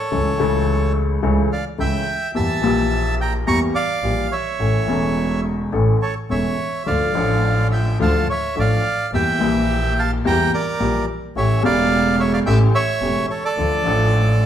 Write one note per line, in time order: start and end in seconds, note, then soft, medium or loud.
0.00 0.92 A4 medium
0.00 0.93 C#5 medium
0.11 0.35 C#2 soft
0.11 0.36 C#2 soft
0.11 0.35 C#3 soft
0.11 0.35 E3 soft
0.11 0.35 A3 soft
0.11 0.35 C#4 soft
0.11 0.35 A4 soft
0.38 1.19 C#2 medium
0.38 1.19 C#3 medium
0.38 1.18 E3 medium
0.38 1.18 A3 medium
0.38 1.19 C#4 medium
0.42 1.20 A4 medium
1.23 1.46 C#2 medium
1.23 1.46 C#3 medium
1.23 1.46 E3 medium
1.23 1.46 A3 medium
1.23 1.46 C#4 medium
1.23 1.46 A4 medium
1.52 1.65 D5 medium
1.52 1.65 F5 medium
1.78 2.02 C#2 soft
1.78 2.02 C#3 soft
1.78 2.02 E3 soft
1.78 2.02 A3 soft
1.78 2.02 C#4 soft
1.78 2.02 A4 soft
1.78 2.31 E5 medium
1.78 2.31 G5 medium
2.35 2.58 E2 soft
2.35 2.58 E2 medium
2.35 2.58 E3 soft
2.35 2.58 G3 soft
2.35 2.58 A#3 soft
2.35 2.58 G4 soft
2.35 3.15 E5 medium
2.35 3.16 A5 medium
2.61 3.42 A#1 medium
2.61 3.43 A#1 medium
2.61 3.43 A#2 medium
2.61 3.42 E3 medium
2.61 3.42 G3 medium
2.61 3.43 A#3 medium
2.65 3.44 G4 medium
3.21 3.33 G5 medium
3.21 3.34 A#5 medium
3.46 3.70 E2 medium
3.46 3.70 E3 medium
3.46 3.70 G3 medium
3.46 3.70 A#3 soft
3.46 3.70 G4 medium
3.46 3.60 A#5 medium
3.46 3.60 C#6 medium
3.75 4.27 D5 medium
3.75 4.33 F5 medium
4.02 4.26 A#1 medium
4.02 4.27 A#1 soft
4.02 4.27 A#2 soft
4.02 4.27 E3 soft
4.02 4.27 G3 soft
4.02 4.27 A#3 soft
4.02 4.27 G4 soft
4.32 5.40 C#5 soft
4.32 5.41 E5 medium
4.59 4.83 A1 soft
4.59 4.83 A2 soft
4.59 4.83 E3 soft
4.59 4.83 A3 soft
4.59 4.83 C#4 soft
4.59 4.84 A4 soft
4.86 5.68 E1 medium
4.86 5.68 E2 medium
4.86 5.67 E3 medium
4.86 5.68 A3 soft
4.86 5.69 C#4 medium
4.86 5.69 A4 medium
5.72 5.96 A1 medium
5.72 5.96 A2 medium
5.72 5.96 E3 medium
5.72 5.96 A3 soft
5.72 5.96 C#4 soft
5.72 5.96 A4 medium
6.02 6.14 A4 soft
6.02 6.15 C#5 medium
6.29 6.53 E1 soft
6.29 6.54 E1 soft
6.29 6.53 E2 soft
6.29 6.53 E3 soft
6.29 6.53 A3 soft
6.29 6.54 C#4 soft
6.29 6.53 A4 soft
6.29 6.83 C#5 medium
6.29 6.89 E5 medium
6.86 7.10 D2 soft
6.86 7.10 D3 soft
6.86 7.10 F3 soft
6.86 7.10 A3 soft
6.86 7.10 D4 soft
6.86 7.10 F4 soft
6.86 7.10 A4 soft
6.86 7.68 D5 medium
6.86 7.68 F5 medium
7.13 7.95 A1 medium
7.13 7.95 A2 medium
7.13 7.94 F3 medium
7.13 7.95 A3 soft
7.13 7.95 A3 medium
7.13 7.95 D4 medium
7.13 7.96 D4 medium
7.13 7.96 F4 medium
7.17 7.96 A4 medium
7.72 7.98 E5 soft
7.72 7.99 G5 medium
7.99 8.24 D2 medium
7.99 8.24 D3 medium
7.99 8.23 F3 medium
7.99 8.23 A3 medium
7.99 8.24 A3 medium
7.99 8.23 D4 medium
7.99 8.24 D4 medium
7.99 8.23 F4 medium
7.99 8.24 A4 medium
7.99 8.27 F5 medium
8.03 8.28 A5 medium
8.30 8.55 C#5 medium
8.30 8.59 E5 medium
8.56 8.80 A1 soft
8.56 8.80 A2 soft
8.56 8.80 F3 soft
8.56 8.80 A3 soft
8.56 8.80 D4 soft
8.56 8.80 F4 soft
8.56 8.80 A4 soft
8.56 9.10 D5 medium
8.61 9.11 F5 medium
9.12 9.36 E2 soft
9.12 9.37 E2 soft
9.12 9.37 E3 soft
9.12 9.37 G3 soft
9.12 9.36 A#3 soft
9.12 9.37 A#3 soft
9.12 9.37 E4 soft
9.12 9.37 G4 soft
9.12 9.94 E5 medium
9.12 10.01 G5 medium
9.39 10.21 A#1 medium
9.39 10.21 A#2 medium
9.39 10.20 E3 medium
9.39 10.21 G3 soft
9.39 10.21 A#3 medium
9.39 10.21 E4 medium
9.39 10.21 G4 medium
9.43 10.22 G4 medium
9.99 10.11 F5 medium
9.99 10.12 A5 medium
10.25 10.49 E2 medium
10.25 10.49 E3 medium
10.25 10.49 G3 medium
10.25 10.48 A#3 medium
10.25 10.49 A#3 soft
10.25 10.49 E4 medium
10.25 10.49 G4 medium
10.25 10.52 G5 medium
10.25 10.52 A#5 medium
10.54 11.05 A#4 medium
10.54 11.06 D5 medium
10.80 11.04 A#1 soft
10.80 11.04 A#2 soft
10.80 11.04 E3 soft
10.80 11.04 G3 soft
10.80 11.04 A#3 soft
10.80 11.04 E4 soft
10.80 11.04 G4 soft
11.36 11.60 A1 soft
11.36 11.60 A2 soft
11.36 11.60 E3 soft
11.36 11.60 A3 soft
11.36 11.60 C#4 soft
11.36 11.60 G4 soft
11.36 11.60 G4 medium
11.36 11.63 C#5 medium
11.36 11.63 E5 medium
11.61 12.42 E1 medium
11.61 12.42 E2 medium
11.61 12.43 C#3 medium
11.61 12.41 E3 medium
11.61 12.42 A3 medium
11.61 12.43 A3 medium
11.61 12.43 G4 medium
11.61 12.16 D5 medium
11.61 12.21 F5 medium
12.20 12.33 C#5 medium
12.20 12.32 E5 medium
12.33 12.39 D5 medium
12.33 12.40 F5 medium
12.46 12.70 A1 medium
12.46 12.70 A2 medium
12.46 12.70 E3 medium
12.46 12.70 A3 medium
12.46 12.70 C#4 medium
12.46 12.70 G4 medium
12.46 12.59 E5 medium
12.46 12.59 G5 medium
12.75 13.26 C#5 medium
12.75 13.26 E5 medium
13.01 13.25 E1 medium
13.01 13.25 E1 soft
13.01 13.25 E2 soft
13.01 13.25 E3 soft
13.01 13.25 A3 soft
13.01 13.25 C#4 soft
13.01 13.25 G4 soft
13.30 13.43 A4 soft
13.30 13.44 C#5 medium
13.45 14.46 A4 medium
13.45 14.46 D5 medium
13.57 13.81 D2 soft
13.57 13.82 D2 soft
13.57 13.82 D3 soft
13.57 13.81 F3 soft
13.57 13.81 A3 soft
13.57 13.82 A3 soft
13.57 13.81 D4 soft
13.57 13.82 D4 soft
13.57 13.82 F4 soft
13.57 13.82 A4 soft
13.83 14.46 A1 medium
13.83 14.46 A2 medium
13.83 14.46 F3 medium
13.83 14.46 A3 medium
13.83 14.46 D4 medium
13.83 14.46 F4 medium
13.88 14.46 A4 medium